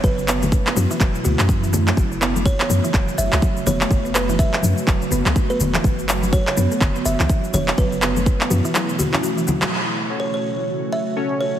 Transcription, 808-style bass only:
X:1
M:4/4
L:1/16
Q:"Swing 16ths" 1/4=124
K:Emix
V:1 name="808-style bass" clef=bass
F,,,4 z2 F,, z E,,, z C,, F,,4 z | F,,,4 z2 F,, z E,,, z F,,, C,, z2 E,,, z | F,,,4 z2 F,, z E,,, z F,,, C,, z2 E,,, z | F,,,4 z2 F,, z E,,, z F,,, C,, z2 E,,, z |
F,,,4 z2 F,, z8 z | z16 |]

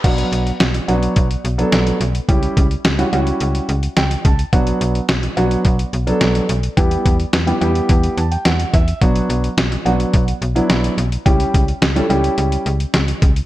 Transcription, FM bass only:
X:1
M:4/4
L:1/8
Q:1/4=107
K:Bm
V:1 name="FM bass" clef=bass
B,,, B,,, B,,, B,,, B,,, B,,, B,,, B,,, | C,, C,, C,, C,, C,, C,, C,, C,, | B,,, B,,, B,,, B,,, B,,, B,,, B,,, B,,, | E,, E,, E,, E,, E,, E,, E,, E,, |
B,,, B,,, B,,, B,,, B,,, B,,, B,,, B,,, | C,, C,, C,, C,, C,, C,, C,, C,, |]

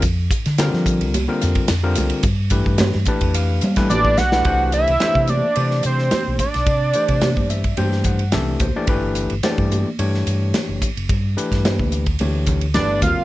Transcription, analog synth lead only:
X:1
M:4/4
L:1/8
Q:"Swing 16ths" 1/4=108
K:Gdor
V:1 name="Analog synth lead"
z8 | z6 d ^f- | [K:Clyd] f e2 d2 c2 d- | d4- d z3 |
z8 | z6 d =f |]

